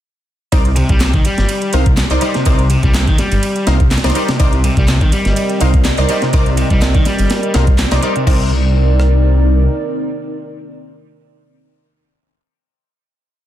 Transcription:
0.52 C2 D#4 A#4 C5 D5, kick, closed hi-hat, ride
0.65 closed hi-hat
0.76 C3, closed hi-hat, ride
0.89 C2 G3, kick, closed hi-hat
1.00 C3, snare, clap, closed hi-hat, ride
1.14 D#3, kick, closed hi-hat
1.25 G3, closed hi-hat, ride
1.38 G1, snare, closed hi-hat
1.49 closed hi-hat, ride
1.62 closed hi-hat
1.73 C2 C3 D#4 A#4 C5 F5, closed hi-hat, ride
1.86 kick, closed hi-hat
1.97 snare, clap, closed hi-hat, ride
2.10 C2 D#4 A#4 C5 D5, closed hi-hat
2.21 G3 D#4 A#4 C5 D5, closed hi-hat, ride
2.34 C3, snare, closed hi-hat
2.45 C2 D#4 A#4 C5 D5, kick, closed hi-hat, ride
2.59 closed hi-hat
2.70 C3, closed hi-hat, ride
2.83 C2 G3, kick, closed hi-hat
2.94 C3, snare, clap, closed hi-hat, ride
3.07 D#3, kick, closed hi-hat
3.18 G3, snare, closed hi-hat, ride
3.32 G1, closed hi-hat, ride
3.43 closed hi-hat, ride
3.56 closed hi-hat
3.67 C2 C3 D#4 A#4 C5 F5, snare, closed hi-hat, ride
3.80 kick, closed hi-hat
3.91 snare, clap, closed hi-hat, ride
3.98 snare, ride
4.04 C2 D#4 A#4 C5 D5, snare, closed hi-hat, ride
4.10 snare, ride
4.15 G3 D#4 A#4 C5 D5, closed hi-hat, ride
4.28 C3, snare, closed hi-hat, ride
4.39 C2 C4 D#4 A#4 C5 D5 D#5, kick, closed hi-hat, ride
4.53 closed hi-hat
4.64 C3, closed hi-hat, ride
4.77 C2 G3, kick, closed hi-hat
4.88 C3, snare, clap, closed hi-hat, ride
5.01 D#3, kick, closed hi-hat
5.12 G3, closed hi-hat, ride
5.25 G1, snare, closed hi-hat
5.36 closed hi-hat, ride
5.50 closed hi-hat
5.61 C2 C3 D#4 A#4 C5 F5, closed hi-hat, ride
5.74 kick, closed hi-hat
5.85 snare, clap, closed hi-hat, ride
5.98 C2 D#4 A#4 C5 D5, closed hi-hat
6.09 G3 D#4 A#4 C5 D5, closed hi-hat, ride
6.22 C3, snare, closed hi-hat
6.33 C2 D#4 A#4 C5 D5, kick, closed hi-hat, ride
6.46 closed hi-hat
6.57 C3, closed hi-hat, ride
6.70 C2 G3, kick, closed hi-hat
6.81 C3, snare, clap, closed hi-hat, ride
6.94 D#3, kick, closed hi-hat
7.05 G3, snare, closed hi-hat, ride
7.19 G1, closed hi-hat, ride
7.30 snare, closed hi-hat, ride
7.43 closed hi-hat
7.54 C2 C3 D#4 A#4 C5 F5, snare, closed hi-hat, ride
7.67 kick, closed hi-hat
7.78 snare, clap, closed hi-hat, ride
7.91 C2 D#4 A#4 C5 D5, snare, closed hi-hat, ride
8.03 G3 D#4 A#4 C5 D5, closed hi-hat
8.16 C3, closed hi-hat
8.27 C2 C3 C4 D#4 A#4 C5 D5, kick, crash
9.00 cross-stick

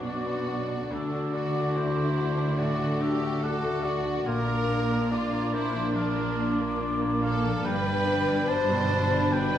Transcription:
Already playing: B1 F#2 B2 F#3 B3 D4 F#4 B4
0.04 D4 F#4 D5 D6
0.26 B3
0.48 D4 F#4
0.68 D4
0.90 D2 D3 A3 D4 F#4 A4 D6
1.12 D4 F#4
1.33 D4 F#4 A4 D5
1.55 F#4 D5
1.75 D4 E4 C5 F#5
1.97 A3 A4
2.17 F#4
2.37 A3 D4
2.57 A2 D4 F#4 D5 D6
2.79 A3 F#4
3.00 D4 G4 A4 E5
3.21 F#4 D5
3.42 D4 F#4 A4 F#5 D6
3.64 A3 A4
3.83 F#4 D5
4.06 A3 D4
4.26 A#1 A#2 A#3 D4 F4 A#4 F5 D6
4.48 A#4
4.68 D4
4.91 D4 A#4
5.10 D4 F4 D5 D6
5.33 A#3
5.53 D4 E4 A#4 C5
5.74 F3 D4
5.95 F3 A#3 D4 F4 A#4 D6
6.16 F3 A#4
6.38 D4 F4
6.59 D4 A#4
6.81 D4 D5
7.01 A#3
7.22 A#3 D4 A4 F5
7.44 F3 D4
7.64 G1 G2 B2 G3 D4 B4 G5 B5
7.86 G3 D5
8.06 D4 D5
8.29 D5 B5
8.48 D4 C5 D5 A5
8.70 B2
8.90 D5
9.12 D3 D4
9.32 D3 B3 B4 G5
9.53 D3 D5

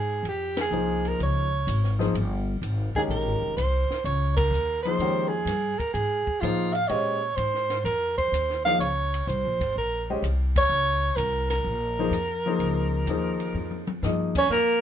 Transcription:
Already playing: G#2 G#4
0.23 F2, ride
0.28 G4
0.57 snare, ride
0.61 G#4
0.71 C2 F3 A#3 D#4 G#4 C5, hi-hat pedal
1.05 A#4, ride
1.19 C#2 C#5, ride
1.67 G#1, hi-hat pedal, ride
1.84 snare
1.99 F3 A#3 D#4 G#4 C5, snare
2.14 G1, ride
2.62 G#1, hi-hat pedal, ride
2.95 D#3 G#3 C#4 G4 G#4 A#4, muted upright bass stroke, kick
3.08 A#1 A#4, ride
3.25 G#1
3.41 F1
3.57 C2 C5, hi-hat pedal, ride
3.90 muted upright bass stroke, snare
4.04 C#2 C#5, ride
4.36 A#4, kick, ride
4.51 D#2, hi-hat pedal
4.83 F3 A#3 D#4 C5, ride
4.87 G#4 C5
4.98 F2 D#3 G#3 C#4 G4 A#4, ride
5.28 G#4
5.45 G2, snare, hi-hat pedal, ride
5.78 A#4, muted upright bass stroke, kick, ride
5.94 G#2 G#4, ride
6.27 muted upright bass stroke, kick
6.41 A2 F3 A#3 D#4 F4 G#4 C5, hi-hat pedal, ride
6.74 F5, ride
6.88 A#2 G#3 C#4 G4 C5 C#5 D#5, ride
7.36 G#2 C5, hi-hat pedal, ride
7.54 snare
7.70 snare, ride
7.84 F2 A#4, ride
8.18 C5, kick, ride
8.32 D#2, hi-hat pedal, ride
8.49 snare
8.65 F3 A#3 D#4 G#4 C5 F5, snare, ride
8.79 C#2 C#5, ride
9.14 ride
9.27 C2 C5, hi-hat pedal
9.44 A#1
9.59 G#1, kick, ride
9.76 A#1 A#4
10.10 G#3 C#4 G4 C5 D#5
10.22 C2, hi-hat pedal, ride
10.56 C#5, kick, ride
10.69 C#2
11.16 C2 A#4, hi-hat pedal, ride
11.50 A#4, snare, ride
11.64 A#1
11.99 F3 A#3 D#4 G#4 C5
12.11 F2, hi-hat pedal, ride
12.46 F3 A#3 D#4 G#4 C5
12.59 C#2, ride
13.06 D#2 F3 A#3 D#4, hi-hat pedal, ride
13.10 G#4 C5
13.40 ride
13.54 F2, mid tom
13.71 mid tom
13.87 mid tom
14.02 G2 F3 A#3 D#4 G#4 D#5, snare, hi-hat pedal
14.35 C#4 C#5, kick, crash
14.49 F2 A#3 A#4, snare

